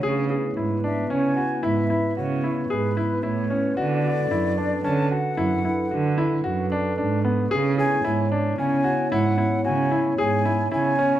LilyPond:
<<
  \new Staff \with { instrumentName = "Flute" } { \time 7/4 \key cis \phrygian \tempo 4 = 112 r4. e''8 gis''4 e''4 cis''4 b'4 cis''4 | d''2 a''8 fis''2 r2 r8 | r8 gis''4 r8 gis''4 fis''4 gis''4 gis''4 gis''4 | }
  \new Staff \with { instrumentName = "Glass harmonica" } { \time 7/4 \key cis \phrygian << { b'1.~ b'4~ | b'1.~ b'4 | cis''1.~ cis''4 | } \\ { <b e'>1.~ <b e'>4 | <d' a'>1.~ <d' a'>4 | <b e'>1.~ <b e'>4 | } >> }
  \new Staff \with { instrumentName = "Grand piano" } { \time 7/4 \key cis \phrygian gis'8 gis'8 e'8 d'8 cis'8 fis'8 e'8 e'8 fis'8 e'8 gis'8 e'8 e'8 cis'8 | fis'8 fis'8 e'8 d'8 cis'8 fis'8 e'8 e'8 fis'8 e'8 fis'8 d'8 d'8 b8 | gis'8 gis'8 e'8 d'8 cis'8 fis'8 e'8 e'8 fis'8 e'8 gis'8 e'8 e'8 cis'8 | }
  \new Staff \with { instrumentName = "Cello" } { \clef bass \time 7/4 \key cis \phrygian cis4 gis,4 cis8 r8 gis,8 r8 cis4 gis,4 a,4 | d4 fis,4 d8 r8 fis,8 r8 d4 fis,4 gis,4 | cis4 gis,4 cis8 r8 gis,8 r8 cis4 gis,4 cis4 | }
>>